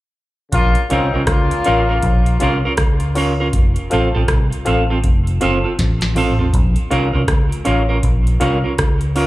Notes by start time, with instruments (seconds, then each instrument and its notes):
0.51 fingered electric bass A#1, horn section C#3 A#3 F4, kick, closed hi-hat
0.75 closed hi-hat
0.90 fingered electric bass C2, horn section D#3 C4 D#4, clean electric guitar C#4 F4 A#4, reed electric piano F4 A#4 C#5 F5, closed hi-hat
1.14 fingered electric bass C2, clean electric guitar C#4 F4 A#4
1.27 fingered electric bass C#2, horn section C#3 A#3 F4, kick, cross-stick, closed hi-hat
1.51 closed hi-hat
1.64 fingered electric bass A1, clean electric guitar C#4 F4 A#4, reed electric piano F4 A#4 C#5 F5, closed hi-hat
1.89 clean electric guitar C#4 F4 A#4
2.03 fingered electric bass A#1, kick, closed hi-hat
2.26 closed hi-hat
2.39 fingered electric bass C2, horn section C#3 A#3 F4, clean electric guitar C#4 F4 A#4, reed electric piano F4 A#4 C#5 F5, closed hi-hat
2.65 clean electric guitar C#4 F4 A#4
2.77 fingered electric bass C#2, kick, cross-stick, closed hi-hat
3.00 closed hi-hat
3.15 clean electric guitar C#4 F4 A#4, reed electric piano F4 A#4 C#5 F5, open hi-hat
3.40 clean electric guitar C#4 F4 A#4
3.53 fingered electric bass F1, kick, closed hi-hat
3.76 closed hi-hat
3.90 fingered electric bass A1, clean electric guitar C4 F4 A4, reed electric piano F4 A4 C5 F5, closed hi-hat
4.15 fingered electric bass A1, clean electric guitar C4 F4 A4
4.28 fingered electric bass C2, kick, cross-stick, closed hi-hat
4.52 closed hi-hat
4.65 fingered electric bass A1, clean electric guitar C4 F4 A4, reed electric piano F4 A4 C5 F5, closed hi-hat
4.90 clean electric guitar C4 F4 A4
5.04 fingered electric bass F1, kick, closed hi-hat
5.27 closed hi-hat
5.41 fingered electric bass F#1, clean electric guitar C4 F4 A4, reed electric piano F4 A4 C5 F5, closed hi-hat
5.64 clean electric guitar C4 F4 A4
5.79 fingered electric bass A1, kick, snare, closed hi-hat
6.01 snare, closed hi-hat
6.15 clean electric guitar C4 F4 A4, reed electric piano F4 A4 C5 F5, mid tom, open hi-hat
6.39 clean electric guitar C4 F4 A4, floor tom
6.53 fingered electric bass A#1, kick, closed hi-hat
6.76 closed hi-hat
6.91 fingered electric bass C2, clean electric guitar C#4 F4 A#4, reed electric piano F4 A#4 C#5 F5, closed hi-hat
7.13 fingered electric bass C2, clean electric guitar C#4 F4 A#4
7.28 fingered electric bass C#2, kick, cross-stick, closed hi-hat
7.52 closed hi-hat
7.65 fingered electric bass A1, clean electric guitar C#4 F4 A#4, reed electric piano F4 A#4 C#5 F5, closed hi-hat
7.89 clean electric guitar C#4 F4 A#4
8.03 fingered electric bass A#1, kick, closed hi-hat
8.27 closed hi-hat
8.40 fingered electric bass C2, clean electric guitar C#4 F4 A#4, reed electric piano F4 A#4 C#5 F5, closed hi-hat
8.64 clean electric guitar C#4 F4 A#4
8.78 fingered electric bass C#2, kick, cross-stick, closed hi-hat
9.01 closed hi-hat
9.15 clean electric guitar C#4 F4 A#4, reed electric piano F4 A#4 C#5 F5, open hi-hat